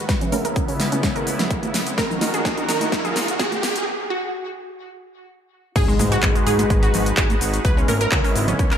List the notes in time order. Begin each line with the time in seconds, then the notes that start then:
Already playing: G#4, riser
0.09 C#2 C#3 B3 E4 B4, kick, snare, closed hi-hat, shaker
0.21 C#4, closed hi-hat, low conga, shaker
0.32 C#4 A#4, open hi-hat, high conga, shaker
0.45 A#4, closed hi-hat, shaker
0.56 C#4, kick, closed hi-hat, shaker
0.68 C#4, open hi-hat, shaker
0.80 snare, open hi-hat, shaker
0.91 C#4, closed hi-hat, high conga, shaker
1.03 C#4, kick, snare, closed hi-hat, shaker
1.16 A#4, closed hi-hat, shaker
1.27 open hi-hat, shaker
1.39 snare, closed hi-hat, low conga, shaker
1.51 kick, closed hi-hat, shaker
1.63 closed hi-hat, high conga, shaker
1.74 snare, open hi-hat, low conga, shaker
1.87 closed hi-hat, shaker
1.98 D#2 D#3 F#4 A#4, kick, snare, closed hi-hat, shaker
2.10 D#4, low conga, shaker
2.21 D#4, snare, open hi-hat, high conga, shaker
2.34 G#4, closed hi-hat, shaker
2.45 D#4, kick, snare, closed hi-hat, shaker
2.57 D#4, closed hi-hat, shaker
2.69 A#4, snare, open hi-hat, shaker
2.80 D#4, closed hi-hat, high conga, shaker
2.92 D#4, kick, snare, closed hi-hat, shaker
3.04 G#4, closed hi-hat, low conga, shaker
3.16 snare, open hi-hat, shaker
3.28 closed hi-hat, shaker
3.39 G#4, kick, snare, closed hi-hat, shaker
3.52 closed hi-hat, high conga, shaker
3.63 snare, open hi-hat, shaker
3.76 closed hi-hat, shaker
4.10 F#4
5.76 G#1 G#3 D#4 F#4 G#4 B4, kick, closed hi-hat, crash, impact, shaker
5.88 G#3, shaker
5.99 G#2 G#3, open hi-hat, high conga, shaker
6.12 F#4, closed hi-hat, shaker
6.23 G#1 G#3, kick, clap, closed hi-hat, shaker
6.35 G#3, closed hi-hat, shaker
6.47 G#2 G#4, open hi-hat, shaker
6.58 G#3, closed hi-hat, high conga, shaker
6.70 G#1 G#3, kick, closed hi-hat, shaker
6.83 F#4, closed hi-hat, shaker
6.94 G#1, open hi-hat, low conga, shaker
7.06 closed hi-hat, shaker
7.17 G#1 G#4, kick, clap, closed hi-hat, shaker
7.30 closed hi-hat, high conga, shaker
7.41 G#1, open hi-hat, shaker
7.54 closed hi-hat, shaker
7.65 C#2 C#3 B3 E4 B4, kick, closed hi-hat, shaker
7.77 C#4, shaker
7.88 G#1 C#4 A#4, open hi-hat, high conga, shaker
8.01 A#4, closed hi-hat, shaker
8.12 C#2 C#4, kick, clap, closed hi-hat, shaker
8.24 C#4, open hi-hat, shaker
8.36 G#1, open hi-hat, shaker
8.47 C#4, closed hi-hat, high conga, low conga, shaker
8.59 C#2 C#4, kick, closed hi-hat, shaker
8.71 A#4, clap, closed hi-hat, shaker